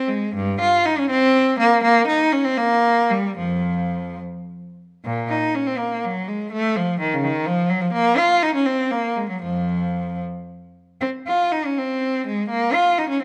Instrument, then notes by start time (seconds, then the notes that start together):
cello
0.08 G#3
0.35 G2
0.60 F4
0.85 D#4
0.99 C#4
1.10 C4
1.59 A#3
1.83 A#3
2.08 D#4
2.32 C#4
2.45 C4
2.57 A#3
3.10 G3
3.38 F2 F3
5.05 A#2
5.29 D#4
5.55 C#4
5.67 C4
5.78 A#3
6.05 F#3
6.28 G#3
6.53 A3
6.76 F3
7.00 D#3
7.14 C#3
7.24 D#3
7.47 F3
7.70 F#3
7.81 F3
7.93 A#3
8.18 F4
8.43 D#4
8.55 C#4
8.66 C4
8.91 A#3
9.17 G#3
9.30 F#3
9.42 F2 F3
11.01 C4
11.27 F4
11.52 D#4
11.66 C#4
11.78 C4
12.27 G#3
12.49 A#3
12.74 F4
12.98 D#4
13.09 C#4